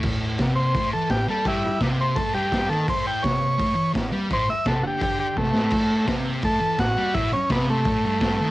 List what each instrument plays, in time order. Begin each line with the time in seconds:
0.03 distorted electric guitar A2, kick, crash
0.38 distorted electric guitar C3, kick, snare, open hi-hat
0.56 transistor combo organ C5
0.75 distorted electric guitar A2, kick, open hi-hat
0.93 distorted electric guitar E3, transistor combo organ A4
1.10 distorted electric guitar A2, transistor combo organ G4, kick, snare, open hi-hat
1.29 distorted electric guitar G3, transistor combo organ A4
1.45 distorted electric guitar A2, transistor combo organ G3 E4, kick, open hi-hat
1.64 muted distorted electric guitar stroke
1.81 distorted electric guitar C3, kick, snare, open hi-hat
2.01 transistor combo organ C5
2.15 distorted electric guitar A2, transistor combo organ A4, kick, open hi-hat
2.33 distorted electric guitar G2, transistor combo organ G4
2.52 kick, snare, open hi-hat
2.69 distorted electric guitar D#3, transistor combo organ A4
2.88 distorted electric guitar A2, transistor combo organ C5, kick, open hi-hat
3.07 transistor combo organ G5
3.23 distorted electric guitar C3, transistor combo organ C#5, kick, snare, open hi-hat
3.59 distorted electric guitar A2, kick, open hi-hat
3.76 distorted electric guitar E3
3.94 distorted electric guitar A2, kick, snare, open hi-hat
4.12 distorted electric guitar G3
4.30 distorted electric guitar A2, transistor combo organ C5, kick, open hi-hat
4.49 transistor combo organ E5, muted distorted electric guitar stroke
4.65 distorted electric guitar C3, transistor combo organ A4, kick, snare, open hi-hat
4.83 distorted electric guitar D3, transistor combo organ F#4
4.87 transistor combo organ G4
5.01 transistor combo organ G4, kick, open hi-hat
5.20 transistor combo organ G4
5.37 distorted electric guitar C3, transistor combo organ A3, kick, snare
5.54 distorted electric guitar A2, snare
5.71 distorted electric guitar A2, kick, crash
6.07 distorted electric guitar C3, kick, snare, open hi-hat
6.42 distorted electric guitar A2, transistor combo organ A4, kick, open hi-hat
6.61 distorted electric guitar E3
6.78 distorted electric guitar A2, transistor combo organ F#4, kick, snare, open hi-hat
6.97 distorted electric guitar G3
7.14 distorted electric guitar A2, transistor combo organ E4, kick, open hi-hat
7.32 transistor combo organ C#4, muted distorted electric guitar stroke
7.50 distorted electric guitar C3, transistor combo organ B3, kick, snare, open hi-hat
7.70 transistor combo organ A3
7.84 distorted electric guitar A2, kick, open hi-hat
8.05 distorted electric guitar G2
8.21 kick, snare, open hi-hat
8.41 distorted electric guitar D#3